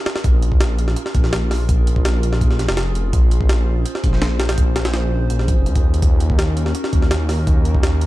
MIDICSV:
0, 0, Header, 1, 4, 480
1, 0, Start_track
1, 0, Key_signature, -5, "minor"
1, 0, Tempo, 361446
1, 324, Time_signature, 4, 2, 24, 8
1, 10709, End_track
2, 0, Start_track
2, 0, Title_t, "Ambient pad"
2, 0, Program_c, 0, 92
2, 0, Note_on_c, 0, 61, 79
2, 0, Note_on_c, 0, 65, 73
2, 0, Note_on_c, 0, 68, 77
2, 0, Note_on_c, 0, 70, 89
2, 271, Note_off_c, 0, 68, 0
2, 272, Note_off_c, 0, 61, 0
2, 272, Note_off_c, 0, 65, 0
2, 274, Note_off_c, 0, 70, 0
2, 328, Note_on_c, 0, 61, 82
2, 329, Note_on_c, 0, 70, 90
2, 330, Note_on_c, 0, 65, 71
2, 330, Note_on_c, 0, 68, 74
2, 4128, Note_off_c, 0, 70, 0
2, 4156, Note_on_c, 0, 72, 93
2, 7954, Note_off_c, 0, 65, 0
2, 7954, Note_off_c, 0, 68, 0
2, 7962, Note_off_c, 0, 72, 0
2, 8004, Note_on_c, 0, 63, 75
2, 8006, Note_on_c, 0, 66, 76
2, 8007, Note_on_c, 0, 70, 88
2, 10709, Note_off_c, 0, 61, 0
2, 10709, Note_off_c, 0, 63, 0
2, 10709, Note_off_c, 0, 66, 0
2, 10709, Note_off_c, 0, 70, 0
2, 10709, End_track
3, 0, Start_track
3, 0, Title_t, "Detuned saw bass"
3, 0, Program_c, 1, 39
3, 324, Note_on_c, 1, 34, 99
3, 1265, Note_off_c, 1, 34, 0
3, 1523, Note_on_c, 1, 34, 95
3, 2225, Note_off_c, 1, 34, 0
3, 2243, Note_on_c, 1, 34, 102
3, 3185, Note_off_c, 1, 34, 0
3, 3201, Note_on_c, 1, 34, 82
3, 3547, Note_off_c, 1, 34, 0
3, 3570, Note_on_c, 1, 29, 92
3, 4147, Note_off_c, 1, 29, 0
3, 4160, Note_on_c, 1, 34, 104
3, 5104, Note_off_c, 1, 34, 0
3, 5361, Note_on_c, 1, 34, 95
3, 6064, Note_off_c, 1, 34, 0
3, 6081, Note_on_c, 1, 34, 101
3, 7024, Note_off_c, 1, 34, 0
3, 7042, Note_on_c, 1, 34, 83
3, 7387, Note_off_c, 1, 34, 0
3, 7406, Note_on_c, 1, 29, 94
3, 7523, Note_on_c, 1, 39, 91
3, 7543, Note_off_c, 1, 29, 0
3, 7985, Note_off_c, 1, 39, 0
3, 8002, Note_on_c, 1, 39, 95
3, 8945, Note_off_c, 1, 39, 0
3, 9201, Note_on_c, 1, 39, 95
3, 9904, Note_off_c, 1, 39, 0
3, 9922, Note_on_c, 1, 39, 97
3, 10709, Note_off_c, 1, 39, 0
3, 10709, End_track
4, 0, Start_track
4, 0, Title_t, "Drums"
4, 82, Note_on_c, 9, 38, 92
4, 207, Note_off_c, 9, 38, 0
4, 207, Note_on_c, 9, 38, 79
4, 322, Note_on_c, 9, 42, 90
4, 323, Note_on_c, 9, 36, 119
4, 340, Note_off_c, 9, 38, 0
4, 455, Note_off_c, 9, 42, 0
4, 456, Note_off_c, 9, 36, 0
4, 564, Note_on_c, 9, 42, 64
4, 687, Note_on_c, 9, 36, 93
4, 697, Note_off_c, 9, 42, 0
4, 804, Note_on_c, 9, 38, 114
4, 804, Note_on_c, 9, 42, 82
4, 820, Note_off_c, 9, 36, 0
4, 937, Note_off_c, 9, 38, 0
4, 937, Note_off_c, 9, 42, 0
4, 1043, Note_on_c, 9, 42, 67
4, 1166, Note_on_c, 9, 38, 46
4, 1176, Note_off_c, 9, 42, 0
4, 1281, Note_on_c, 9, 42, 81
4, 1299, Note_off_c, 9, 38, 0
4, 1406, Note_on_c, 9, 38, 55
4, 1414, Note_off_c, 9, 42, 0
4, 1521, Note_on_c, 9, 42, 70
4, 1522, Note_on_c, 9, 36, 95
4, 1538, Note_off_c, 9, 38, 0
4, 1646, Note_on_c, 9, 38, 40
4, 1654, Note_off_c, 9, 42, 0
4, 1655, Note_off_c, 9, 36, 0
4, 1762, Note_off_c, 9, 38, 0
4, 1762, Note_on_c, 9, 38, 115
4, 1762, Note_on_c, 9, 42, 89
4, 1895, Note_off_c, 9, 38, 0
4, 1895, Note_off_c, 9, 42, 0
4, 2005, Note_on_c, 9, 38, 55
4, 2005, Note_on_c, 9, 46, 83
4, 2137, Note_off_c, 9, 38, 0
4, 2137, Note_off_c, 9, 46, 0
4, 2242, Note_on_c, 9, 36, 113
4, 2243, Note_on_c, 9, 42, 94
4, 2375, Note_off_c, 9, 36, 0
4, 2376, Note_off_c, 9, 42, 0
4, 2485, Note_on_c, 9, 42, 69
4, 2606, Note_on_c, 9, 36, 94
4, 2617, Note_off_c, 9, 42, 0
4, 2723, Note_on_c, 9, 38, 120
4, 2723, Note_on_c, 9, 42, 87
4, 2738, Note_off_c, 9, 36, 0
4, 2856, Note_off_c, 9, 38, 0
4, 2856, Note_off_c, 9, 42, 0
4, 2964, Note_on_c, 9, 42, 80
4, 3089, Note_on_c, 9, 38, 53
4, 3096, Note_off_c, 9, 42, 0
4, 3202, Note_on_c, 9, 36, 81
4, 3205, Note_on_c, 9, 42, 59
4, 3222, Note_off_c, 9, 38, 0
4, 3328, Note_on_c, 9, 38, 36
4, 3334, Note_off_c, 9, 36, 0
4, 3338, Note_off_c, 9, 42, 0
4, 3444, Note_off_c, 9, 38, 0
4, 3444, Note_on_c, 9, 38, 40
4, 3444, Note_on_c, 9, 42, 66
4, 3566, Note_off_c, 9, 38, 0
4, 3566, Note_on_c, 9, 38, 123
4, 3577, Note_off_c, 9, 42, 0
4, 3680, Note_off_c, 9, 38, 0
4, 3680, Note_on_c, 9, 38, 104
4, 3680, Note_on_c, 9, 42, 81
4, 3813, Note_off_c, 9, 38, 0
4, 3813, Note_off_c, 9, 42, 0
4, 3921, Note_on_c, 9, 42, 61
4, 4054, Note_off_c, 9, 42, 0
4, 4159, Note_on_c, 9, 42, 91
4, 4160, Note_on_c, 9, 36, 113
4, 4292, Note_off_c, 9, 42, 0
4, 4293, Note_off_c, 9, 36, 0
4, 4400, Note_on_c, 9, 42, 65
4, 4524, Note_on_c, 9, 36, 94
4, 4533, Note_off_c, 9, 42, 0
4, 4639, Note_on_c, 9, 38, 118
4, 4639, Note_on_c, 9, 42, 82
4, 4656, Note_off_c, 9, 36, 0
4, 4772, Note_off_c, 9, 38, 0
4, 4772, Note_off_c, 9, 42, 0
4, 5120, Note_on_c, 9, 42, 84
4, 5247, Note_on_c, 9, 38, 54
4, 5253, Note_off_c, 9, 42, 0
4, 5361, Note_on_c, 9, 36, 95
4, 5361, Note_on_c, 9, 42, 68
4, 5380, Note_off_c, 9, 38, 0
4, 5485, Note_on_c, 9, 38, 39
4, 5493, Note_off_c, 9, 36, 0
4, 5494, Note_off_c, 9, 42, 0
4, 5600, Note_off_c, 9, 38, 0
4, 5600, Note_on_c, 9, 38, 112
4, 5600, Note_on_c, 9, 42, 86
4, 5732, Note_off_c, 9, 38, 0
4, 5732, Note_off_c, 9, 42, 0
4, 5837, Note_on_c, 9, 38, 106
4, 5837, Note_on_c, 9, 42, 78
4, 5962, Note_off_c, 9, 38, 0
4, 5962, Note_off_c, 9, 42, 0
4, 5962, Note_on_c, 9, 38, 107
4, 5962, Note_on_c, 9, 42, 79
4, 6078, Note_off_c, 9, 42, 0
4, 6078, Note_on_c, 9, 42, 94
4, 6080, Note_on_c, 9, 36, 120
4, 6095, Note_off_c, 9, 38, 0
4, 6211, Note_off_c, 9, 42, 0
4, 6212, Note_off_c, 9, 36, 0
4, 6318, Note_on_c, 9, 38, 95
4, 6318, Note_on_c, 9, 42, 78
4, 6441, Note_off_c, 9, 38, 0
4, 6441, Note_off_c, 9, 42, 0
4, 6441, Note_on_c, 9, 38, 107
4, 6441, Note_on_c, 9, 42, 78
4, 6555, Note_off_c, 9, 38, 0
4, 6555, Note_off_c, 9, 42, 0
4, 6555, Note_on_c, 9, 38, 100
4, 6555, Note_on_c, 9, 42, 81
4, 6688, Note_off_c, 9, 38, 0
4, 6688, Note_off_c, 9, 42, 0
4, 7038, Note_on_c, 9, 42, 88
4, 7163, Note_on_c, 9, 38, 42
4, 7171, Note_off_c, 9, 42, 0
4, 7279, Note_on_c, 9, 42, 83
4, 7280, Note_on_c, 9, 36, 99
4, 7296, Note_off_c, 9, 38, 0
4, 7412, Note_off_c, 9, 42, 0
4, 7413, Note_off_c, 9, 36, 0
4, 7519, Note_on_c, 9, 42, 57
4, 7642, Note_off_c, 9, 42, 0
4, 7642, Note_on_c, 9, 42, 77
4, 7644, Note_on_c, 9, 36, 102
4, 7775, Note_off_c, 9, 42, 0
4, 7776, Note_off_c, 9, 36, 0
4, 7886, Note_on_c, 9, 42, 59
4, 8000, Note_off_c, 9, 42, 0
4, 8000, Note_on_c, 9, 42, 93
4, 8001, Note_on_c, 9, 36, 118
4, 8133, Note_off_c, 9, 36, 0
4, 8133, Note_off_c, 9, 42, 0
4, 8239, Note_on_c, 9, 42, 64
4, 8364, Note_on_c, 9, 36, 96
4, 8371, Note_off_c, 9, 42, 0
4, 8482, Note_on_c, 9, 38, 116
4, 8482, Note_on_c, 9, 42, 91
4, 8497, Note_off_c, 9, 36, 0
4, 8615, Note_off_c, 9, 38, 0
4, 8615, Note_off_c, 9, 42, 0
4, 8722, Note_on_c, 9, 42, 72
4, 8846, Note_on_c, 9, 38, 48
4, 8855, Note_off_c, 9, 42, 0
4, 8960, Note_on_c, 9, 42, 89
4, 8978, Note_off_c, 9, 38, 0
4, 9085, Note_on_c, 9, 38, 57
4, 9093, Note_off_c, 9, 42, 0
4, 9201, Note_on_c, 9, 36, 93
4, 9201, Note_on_c, 9, 42, 71
4, 9217, Note_off_c, 9, 38, 0
4, 9328, Note_on_c, 9, 38, 42
4, 9334, Note_off_c, 9, 36, 0
4, 9334, Note_off_c, 9, 42, 0
4, 9441, Note_off_c, 9, 38, 0
4, 9441, Note_on_c, 9, 38, 112
4, 9441, Note_on_c, 9, 42, 82
4, 9573, Note_off_c, 9, 38, 0
4, 9573, Note_off_c, 9, 42, 0
4, 9681, Note_on_c, 9, 38, 55
4, 9681, Note_on_c, 9, 46, 81
4, 9814, Note_off_c, 9, 38, 0
4, 9814, Note_off_c, 9, 46, 0
4, 9921, Note_on_c, 9, 42, 91
4, 9922, Note_on_c, 9, 36, 114
4, 10054, Note_off_c, 9, 42, 0
4, 10055, Note_off_c, 9, 36, 0
4, 10162, Note_on_c, 9, 42, 67
4, 10286, Note_on_c, 9, 36, 97
4, 10295, Note_off_c, 9, 42, 0
4, 10402, Note_on_c, 9, 38, 117
4, 10402, Note_on_c, 9, 42, 91
4, 10419, Note_off_c, 9, 36, 0
4, 10535, Note_off_c, 9, 38, 0
4, 10535, Note_off_c, 9, 42, 0
4, 10642, Note_on_c, 9, 42, 81
4, 10709, Note_off_c, 9, 42, 0
4, 10709, End_track
0, 0, End_of_file